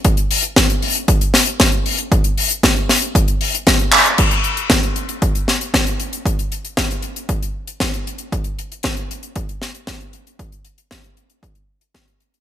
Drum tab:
CC |----------------|----------------|x---------------|----------------|
HH |xxoxxxoxxxoxxxox|xxoxxxoxxxoxxxox|xxxxxxxxxx-xxxxx|xxxxxxxxxx-xxxxx|
CP |----------------|--------------x-|----------------|----------------|
SD |----o-----o-o---|----o-o-----o---|----o-----o-o---|----o-------o---|
BD |o---o---o---o---|o---o---o---o---|o---o---o---o---|o---o---o---o---|

CC |----------------|----------------|
HH |xxxxxxxxxx-xxxxx|xxxxxxxxxx-xxxxx|
CP |----------------|----------------|
SD |----o-----o-o---|----o-------o---|
BD |o---o---o---o---|o---o---o---o---|